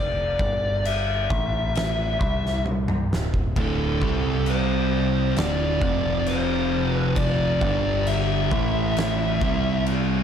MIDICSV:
0, 0, Header, 1, 5, 480
1, 0, Start_track
1, 0, Tempo, 902256
1, 1899, Time_signature, 4, 2, 24, 8
1, 5444, End_track
2, 0, Start_track
2, 0, Title_t, "Lead electric guitar"
2, 0, Program_c, 0, 29
2, 0, Note_on_c, 0, 74, 113
2, 456, Note_on_c, 0, 76, 100
2, 471, Note_off_c, 0, 74, 0
2, 1398, Note_off_c, 0, 76, 0
2, 1916, Note_on_c, 0, 69, 84
2, 2392, Note_on_c, 0, 72, 81
2, 2402, Note_off_c, 0, 69, 0
2, 2866, Note_off_c, 0, 72, 0
2, 2868, Note_on_c, 0, 74, 100
2, 3341, Note_off_c, 0, 74, 0
2, 3344, Note_on_c, 0, 72, 91
2, 3673, Note_off_c, 0, 72, 0
2, 3673, Note_on_c, 0, 71, 91
2, 3816, Note_off_c, 0, 71, 0
2, 3818, Note_on_c, 0, 74, 111
2, 4294, Note_on_c, 0, 76, 95
2, 4310, Note_off_c, 0, 74, 0
2, 5230, Note_off_c, 0, 76, 0
2, 5444, End_track
3, 0, Start_track
3, 0, Title_t, "Distorted electric guitar"
3, 0, Program_c, 1, 30
3, 1895, Note_on_c, 1, 38, 93
3, 1899, Note_on_c, 1, 45, 90
3, 1903, Note_on_c, 1, 50, 97
3, 2139, Note_off_c, 1, 38, 0
3, 2139, Note_on_c, 1, 48, 97
3, 2143, Note_off_c, 1, 45, 0
3, 2143, Note_on_c, 1, 55, 94
3, 2145, Note_off_c, 1, 50, 0
3, 2145, Note_on_c, 1, 60, 105
3, 2851, Note_off_c, 1, 48, 0
3, 2853, Note_off_c, 1, 55, 0
3, 2854, Note_off_c, 1, 60, 0
3, 2859, Note_on_c, 1, 38, 85
3, 2864, Note_on_c, 1, 45, 101
3, 2865, Note_on_c, 1, 50, 100
3, 3091, Note_off_c, 1, 38, 0
3, 3093, Note_off_c, 1, 45, 0
3, 3094, Note_off_c, 1, 50, 0
3, 3095, Note_on_c, 1, 41, 79
3, 3098, Note_on_c, 1, 48, 92
3, 3104, Note_on_c, 1, 53, 96
3, 4046, Note_off_c, 1, 41, 0
3, 4048, Note_off_c, 1, 48, 0
3, 4051, Note_off_c, 1, 53, 0
3, 4053, Note_on_c, 1, 43, 86
3, 4057, Note_on_c, 1, 50, 92
3, 4058, Note_on_c, 1, 55, 100
3, 4525, Note_off_c, 1, 43, 0
3, 4527, Note_off_c, 1, 50, 0
3, 4528, Note_off_c, 1, 55, 0
3, 4532, Note_on_c, 1, 45, 81
3, 4537, Note_on_c, 1, 52, 91
3, 4539, Note_on_c, 1, 57, 104
3, 5004, Note_off_c, 1, 45, 0
3, 5006, Note_off_c, 1, 52, 0
3, 5008, Note_off_c, 1, 57, 0
3, 5011, Note_on_c, 1, 48, 95
3, 5016, Note_on_c, 1, 55, 86
3, 5018, Note_on_c, 1, 60, 86
3, 5444, Note_off_c, 1, 48, 0
3, 5444, Note_off_c, 1, 55, 0
3, 5444, Note_off_c, 1, 60, 0
3, 5444, End_track
4, 0, Start_track
4, 0, Title_t, "Picked electric bass"
4, 0, Program_c, 2, 34
4, 0, Note_on_c, 2, 29, 89
4, 188, Note_off_c, 2, 29, 0
4, 209, Note_on_c, 2, 31, 94
4, 672, Note_off_c, 2, 31, 0
4, 692, Note_on_c, 2, 33, 96
4, 1154, Note_off_c, 2, 33, 0
4, 1172, Note_on_c, 2, 36, 82
4, 1635, Note_off_c, 2, 36, 0
4, 1662, Note_on_c, 2, 26, 76
4, 1884, Note_off_c, 2, 26, 0
4, 1895, Note_on_c, 2, 26, 95
4, 2120, Note_off_c, 2, 26, 0
4, 2136, Note_on_c, 2, 36, 88
4, 2836, Note_off_c, 2, 36, 0
4, 2857, Note_on_c, 2, 26, 98
4, 3080, Note_off_c, 2, 26, 0
4, 3091, Note_on_c, 2, 29, 94
4, 4030, Note_off_c, 2, 29, 0
4, 4050, Note_on_c, 2, 31, 91
4, 4510, Note_off_c, 2, 31, 0
4, 4530, Note_on_c, 2, 33, 104
4, 4989, Note_off_c, 2, 33, 0
4, 5008, Note_on_c, 2, 36, 86
4, 5444, Note_off_c, 2, 36, 0
4, 5444, End_track
5, 0, Start_track
5, 0, Title_t, "Drums"
5, 210, Note_on_c, 9, 36, 92
5, 263, Note_off_c, 9, 36, 0
5, 454, Note_on_c, 9, 49, 62
5, 507, Note_off_c, 9, 49, 0
5, 693, Note_on_c, 9, 36, 109
5, 747, Note_off_c, 9, 36, 0
5, 933, Note_on_c, 9, 49, 57
5, 944, Note_on_c, 9, 38, 100
5, 986, Note_off_c, 9, 49, 0
5, 997, Note_off_c, 9, 38, 0
5, 1175, Note_on_c, 9, 36, 102
5, 1228, Note_off_c, 9, 36, 0
5, 1308, Note_on_c, 9, 38, 31
5, 1361, Note_off_c, 9, 38, 0
5, 1414, Note_on_c, 9, 48, 60
5, 1467, Note_off_c, 9, 48, 0
5, 1534, Note_on_c, 9, 47, 69
5, 1587, Note_off_c, 9, 47, 0
5, 1665, Note_on_c, 9, 38, 85
5, 1718, Note_off_c, 9, 38, 0
5, 1776, Note_on_c, 9, 36, 85
5, 1829, Note_off_c, 9, 36, 0
5, 1896, Note_on_c, 9, 36, 110
5, 1897, Note_on_c, 9, 49, 57
5, 1949, Note_off_c, 9, 36, 0
5, 1950, Note_off_c, 9, 49, 0
5, 2136, Note_on_c, 9, 36, 92
5, 2190, Note_off_c, 9, 36, 0
5, 2373, Note_on_c, 9, 49, 57
5, 2427, Note_off_c, 9, 49, 0
5, 2854, Note_on_c, 9, 49, 53
5, 2865, Note_on_c, 9, 38, 107
5, 2907, Note_off_c, 9, 49, 0
5, 2919, Note_off_c, 9, 38, 0
5, 3094, Note_on_c, 9, 36, 102
5, 3147, Note_off_c, 9, 36, 0
5, 3333, Note_on_c, 9, 49, 58
5, 3386, Note_off_c, 9, 49, 0
5, 3809, Note_on_c, 9, 49, 57
5, 3811, Note_on_c, 9, 36, 103
5, 3862, Note_off_c, 9, 49, 0
5, 3864, Note_off_c, 9, 36, 0
5, 4051, Note_on_c, 9, 36, 102
5, 4104, Note_off_c, 9, 36, 0
5, 4291, Note_on_c, 9, 49, 60
5, 4344, Note_off_c, 9, 49, 0
5, 4530, Note_on_c, 9, 36, 112
5, 4583, Note_off_c, 9, 36, 0
5, 4770, Note_on_c, 9, 49, 60
5, 4781, Note_on_c, 9, 38, 106
5, 4823, Note_off_c, 9, 49, 0
5, 4834, Note_off_c, 9, 38, 0
5, 5009, Note_on_c, 9, 36, 114
5, 5062, Note_off_c, 9, 36, 0
5, 5248, Note_on_c, 9, 49, 63
5, 5301, Note_off_c, 9, 49, 0
5, 5444, End_track
0, 0, End_of_file